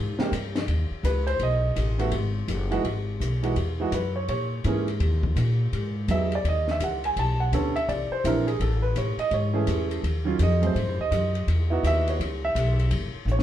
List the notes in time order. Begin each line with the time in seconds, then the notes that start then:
Already playing: G#2
0.19 C3 G#3 A#3 G4, muted upright bass stroke, snare
0.32 G2, kick, hi-hat pedal, ride
0.55 snare, ride
0.67 D#2, kick, ride
0.91 muted upright bass stroke
1.03 C#2 B4, kick, hi-hat pedal, ride
1.27 C5, ride
1.40 B1 D#5, kick, ride
1.76 A1, kick, hi-hat pedal, ride
1.98 D#3 A3 B3 F#4, ride
2.12 G#1, kick, ride
2.48 F#1, kick, hi-hat pedal, ride
2.71 E3 G#3 D#4 F#4, ride
2.84 G#1, kick, ride
3.20 B1, kick, hi-hat pedal, ride
3.43 E3 G#3 D#4 F#4, ride
3.56 E2, kick, ride
3.80 E3 G#3 D#4 F#4
3.92 F#2 B4, kick, hi-hat pedal, ride
4.16 C#5
4.28 A#2 C#5, kick, ride
4.64 G#2 E3 A#3 C#4 G#4, kick, hi-hat pedal, ride
4.88 ride
5.00 D#2, kick, ride
5.23 kick
5.36 A#2, kick, hi-hat pedal, ride
5.72 G#2, kick, ride
6.08 E2 F#3 B3 D#4 G#4 E5, kick, hi-hat pedal, ride
6.32 D5, ride
6.44 D#2, kick, ride
6.48 D#5
6.67 E5, snare
6.80 C#2 F#5, kick, hi-hat pedal, ride
7.04 G#5, ride
7.16 B1 A5, kick, ride
7.40 F#5
7.52 D2 D3 B3 C#4 A4 C#5, kick, hi-hat pedal, ride
7.76 E5, ride
7.89 C2 D5, kick, ride
8.11 C5, muted upright bass stroke
8.24 A#1 E3 C4 D4 E4 A#4, kick, hi-hat pedal, ride
8.47 G#4, ride
8.60 A1 A4, kick, ride
8.82 B4
8.96 A2 C#5, kick, hi-hat pedal, ride
9.17 D#5, muted upright bass stroke, ride
9.31 G#2 C#5, kick, ride
9.53 E3 A3 C#4 G#4
9.67 E2, kick, hi-hat pedal, ride
9.91 ride
10.04 D#2, kick, ride
10.25 D#3 F#3 C#4 F4
10.39 F2 D#5, kick, hi-hat pedal, ride
10.61 F#3 A3 C4 G#4, ride
10.67 C5
10.75 G#2, kick, ride
10.87 F#2
10.99 D#2 D#5
11.11 F#2, kick, hi-hat pedal, ride
11.35 ride
11.47 E2, kick, ride
11.70 B3 D#4 E4 F#4
11.83 D#2 E5, kick, hi-hat pedal, ride
12.07 C#5, ride
12.19 C#2, kick, ride
12.45 E5
12.55 B1, kick, hi-hat pedal, ride
12.79 ride
12.91 F#1, kick, ride
13.13 muted upright bass stroke
13.25 A1, hi-hat pedal
13.32 C#5
13.39 snare